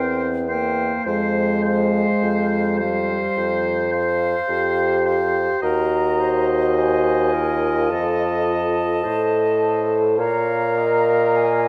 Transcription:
Already playing: E2 C4 A#4 C5 G5
0.48 A#3 A#4 C5 G5
1.06 F2 G#3 C5 F5
1.64 C5 F5
2.22 F2
2.79 G3 C5 F5
3.37 F2
3.91 C5 F5
4.49 F2 G4
5.04 C5 F5
5.62 D#2 F#4 A#4 D#5 A#5
6.20 C5
6.76 C5 G#5
7.33 F4 A#4
7.89 F2 A4 A5
9.04 A2 A4 C5
9.61 C5
10.19 A#2 A#4 C#5 F5 A#5
10.78 D#5
11.36 G#5

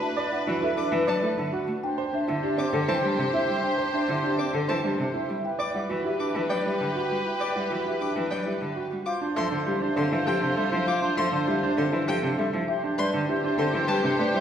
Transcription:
Already playing: D4 B4
0.01 E4 A5
0.17 D5
0.32 E4 F#5
0.47 E3 F#4
0.62 E4 A4
0.77 D4 D6
0.92 E3 B4
1.07 F#3 D5 A5
1.23 A3 E4 A4
1.38 D3
1.53 F#4 F#5
1.68 A3
1.83 D4 G4 C5 G5
1.98 C5
2.13 D4 E5
2.28 D3 E4
2.43 D4 G4
2.58 C4 D6
2.73 D3 A4
2.88 E3 C5 A5
3.03 G3 D4 G4
3.18 C3
3.33 E4 E5
3.49 G3
3.63 D4 G5
3.78 C5
3.94 D4 E5
4.08 D3 E4
4.24 D4 G4
4.38 C4 D6
4.54 D3 A4
4.68 E3 C5 A5
4.84 G3 D4 G4
4.98 C3
5.14 E4 E5
5.29 G3
5.44 E4 G4 B4 G5
5.59 D5 D6
5.74 G3 E4 F#5
5.89 E3 F#4
6.05 E4 G4
6.19 D4 D6
6.35 E3 B4
6.50 F#3 D5 G5
6.65 G3 E4 G4
6.80 D3
6.95 F#4 F#5
7.10 G3
7.25 E4 G5
7.40 D5 D6
7.55 G3 E4 F#5
7.70 E3 F#4
7.85 E4 G4
8.01 D4 D6
8.15 E3 B4
8.31 F#3 D5 G5
8.46 G3 E4 G4
8.61 D3
8.76 F#4 F#5
8.91 G3
9.06 F4 C5 F5 D6
9.21 D4 C5
9.35 F3 A4 C5 E5 C6
9.51 D3 D4 C5
9.66 G3 E4 G4 C5
9.81 D4 C5
9.96 D3 C4 A4 C5 C6
10.11 E3 E4 C5
10.26 F3 G4 A4 C5 G5
10.41 C3 D4 C5
10.56 G3 A4 C5 E5
10.72 F3 E4 C5
10.87 F4 C5 F5 D6
11.02 D4 C5
11.17 F3 A4 C5 E5 C6
11.32 D3 D4 C5
11.47 G3 E4 G4 C5
11.63 D4 C5
11.77 D3 C4 A4 C5 C6
11.93 E3 E4 C5
12.07 F3 G4 A4 C5 G5
12.22 C3 D4 C5
12.38 G3 A4 C5 E5
12.53 F3 E4
12.68 G4 C5 E5
12.83 D4 C5
12.98 G3 B4 C5 D5 C6
13.13 D3 D4 C5
13.29 E4 G4 C5
13.44 D4 C5
13.58 D3 C4 A4 C5 C6
13.74 E3 C5
13.88 G3 G4 B4 C5 A5
14.03 C3 D4 C5
14.18 A3 B4 C5 D5
14.34 G3 E4 C5

